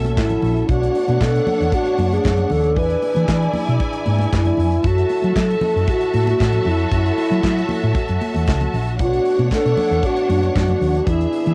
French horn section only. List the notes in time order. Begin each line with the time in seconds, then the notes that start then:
Already playing: F#3 F#4 A4
0.68 A3 B3 D4
2.75 E3 G#4
4.85 F#3 E4 A4
6.92 F#4
9.00 A3 B3 D4
11.06 E3 G#4